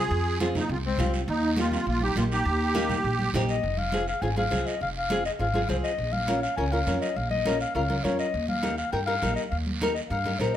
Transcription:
0.00 F4 G#4
0.11 F2, high conga, long guiro
0.40 C4 F4 G#4, high conga, short guiro
0.55 A#3 D#4, high conga, low conga, short guiro
0.69 C2 C4 F4, high conga, long guiro
0.86 G#3 C4
0.98 C2 C4 F4 G4, high conga, low conga, short guiro
1.14 short guiro
1.28 D#2 A#3 D#4, high conga, long guiro
1.56 A#3 D#4 F4 G4, high conga, short guiro
1.72 C4 F4, high conga, short guiro
1.86 A#1 A#3 F4, high conga, long guiro
2.01 D#4 G4, high conga
2.16 A#1 A#3 D#4 F4 G4, high conga, short guiro
2.32 D#4 G4, short guiro
2.45 D#2, high conga, long guiro
2.75 A#3 D#4 G4, high conga, short guiro
2.90 high conga, low conga, short guiro
3.04 A#1, high conga, long guiro
3.19 high conga
3.34 A#1 A#3 D#4 G4 C5, high conga, low conga, short guiro
3.49 D#5, short guiro
3.63 F1, high conga, long guiro
3.77 F5, high conga
3.92 C4 F4 G#4, high conga, short guiro
4.08 F5, short guiro
4.22 G#1 C4 F4 G#4 G#5, high conga, long guiro
4.36 C4 F4 G#4 F5, high conga
4.51 C2 C4 F4 G#4, high conga, short guiro
4.67 D#5, short guiro
4.80 F1 F5, high conga, long guiro
4.97 F5
5.10 C4 F4 G#4, high conga, short guiro
5.25 D#5, short guiro
5.39 G#1 C4 F4 G#4 F5, high conga, long guiro
5.54 C4 F4 G#4, high conga
5.68 C2 C4 F4 G#4 C5, high conga, short guiro
5.84 D#5, short guiro
5.98 A#1, high conga, long guiro
6.13 F5, high conga
6.28 C#4 F4 A#4, high conga, short guiro
6.42 F5, short guiro
6.57 C#2 C#4 F4 A#4 G#5, high conga, long guiro
6.72 C#4 F4 A#4 F5
6.86 F2 C#4 F4 A#4, high conga, short guiro
7.01 D#5, short guiro
7.16 A#1 F5, high conga, long guiro
7.31 D#5, high conga
7.45 C#4 F4 A#4, high conga, short guiro
7.61 F5, short guiro
7.75 C#2 C#4 F4 A#4 F5, high conga, long guiro
7.89 C#4 F4 A#4, high conga
8.04 F2 C#4 F4 A#4 C#5, high conga, short guiro
8.19 D#5, short guiro
8.34 D#2, high conga, long guiro
8.48 F5, high conga
8.62 D#4 G4 A#4, high conga, short guiro
8.78 F5, short guiro
8.92 G2 D#4 G4 A#4 G5, high conga, long guiro
9.06 D#4 G4 A#4 F5
9.22 A#1 D#4 G4 A#4, high conga, short guiro
9.36 D#5, short guiro
9.50 D#2 F5, high conga, long guiro
9.67 high conga
9.81 D#4 G4 A#4, high conga, short guiro
9.94 D#5, short guiro
10.10 G2 D#4 G4 A#4 F5, high conga, long guiro
10.25 D#4 G4 A#4, high conga
10.39 A#1 D#4 G4 A#4 C5, high conga, short guiro

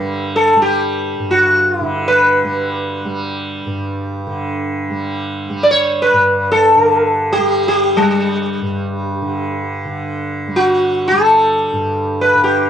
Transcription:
Already playing: G2 D3 G3 B4
0.36 A4
0.56 G3
0.62 G4
1.19 G2
1.31 F#4
1.81 D3 E4
2.08 B4
2.44 G3
3.05 G3
3.66 G2
4.27 D3
4.90 G3
5.49 G3
5.63 D5
5.71 C#5
6.02 B4
6.13 G2
6.51 A4
6.76 D3
7.32 G4
7.38 G3
7.68 G4
7.97 G3
8.62 G2
9.22 D3
9.85 D3
10.48 G3
10.56 F#4
11.08 A4
11.12 G3
11.73 G2
12.21 B4
12.35 D3
12.44 G4

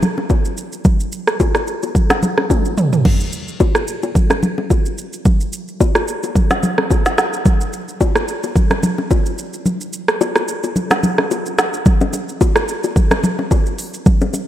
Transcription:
0.02 low conga, shaker
0.18 low bongo
0.30 kick, high bongo, shaker
0.45 shaker
0.57 shaker
0.73 shaker
0.85 kick, low conga, shaker
1.00 shaker
1.12 shaker
1.27 cross-stick, shaker
1.40 kick, high bongo, shaker
1.55 cross-stick, high bongo, shaker
1.67 shaker
1.83 high bongo, shaker
1.95 kick, low conga, shaker
2.10 cross-stick, snare, low bongo, shaker
2.23 low conga, shaker
2.38 cross-stick, low bongo
2.50 kick, high tom, high bongo, shaker
2.65 shaker
2.78 mid tom, shaker
2.93 floor tom, shaker
3.05 kick, crash, low conga
3.20 shaker
3.33 shaker
3.48 shaker
3.60 kick, high bongo, shaker
3.75 cross-stick, high bongo, shaker
3.88 shaker
4.03 high bongo, shaker
4.15 kick, low conga, shaker
4.30 cross-stick, low bongo, shaker
4.43 low conga, shaker
4.58 low bongo
4.70 kick, high bongo, shaker
4.86 shaker
4.98 shaker
5.13 shaker
5.25 kick, low conga, shaker
5.41 shaker
5.53 shaker
5.68 shaker
5.80 kick, high bongo, shaker
5.95 cross-stick, high bongo, shaker
6.08 shaker
6.23 high bongo, shaker
6.35 kick, low conga, shaker
6.50 snare, low bongo, shaker
6.63 low conga, shaker
6.78 cross-stick, low bongo
6.91 kick, high bongo, shaker
7.06 snare, shaker
7.18 cross-stick, snare, shaker
7.33 shaker
7.45 kick, low conga, shaker
7.61 shaker
7.73 shaker
7.88 shaker
8.01 kick, high bongo, shaker
8.15 cross-stick, high bongo, shaker
8.28 shaker
8.43 high bongo, shaker
8.56 kick, low conga, shaker
8.71 cross-stick, low bongo, shaker
8.83 low conga, shaker
8.98 low bongo
9.11 kick, high bongo, shaker
9.26 shaker
9.38 shaker
9.53 shaker
9.66 low conga, shaker
9.81 shaker
9.93 shaker
10.08 cross-stick, shaker
10.21 high bongo, shaker
10.36 cross-stick, high bongo, shaker
10.48 shaker
10.63 high bongo, shaker
10.76 low conga, shaker
10.91 cross-stick, snare, low bongo, shaker
11.03 low conga, shaker
11.18 cross-stick, low bongo
11.31 high bongo, shaker
11.46 shaker
11.58 cross-stick, snare, shaker
11.73 shaker
11.86 kick, low conga, shaker
12.01 low bongo, shaker
12.13 low bongo, shaker
12.29 shaker
12.41 kick, high bongo, shaker
12.56 cross-stick, high bongo, shaker
12.68 shaker
12.84 high bongo, shaker
12.96 kick, low conga, shaker
13.11 cross-stick, low bongo, shaker
13.24 low conga, shaker
13.39 low bongo
13.51 kick, high bongo, shaker
13.66 shaker
13.79 open hi-hat, shaker
13.94 shaker
14.06 kick, low conga, shaker
14.21 low bongo, shaker
14.34 low bongo, shaker

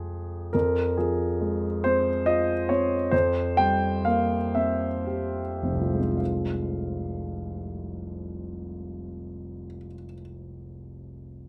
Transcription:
Already playing: F2 F3 G#3 F4
0.53 F2 A#4
0.97 F3 G#4
1.41 G#3
1.84 C4 C5
2.26 F4 D#5
2.69 C4 C#5
3.11 F2 C5
3.57 G3 G5
4.05 A#3 F5
4.55 C4 E5
5.07 G4
5.62 F1 C4
5.72 C2
5.81 F3
5.91 G#3
6.00 C4
6.09 F4
6.17 F5

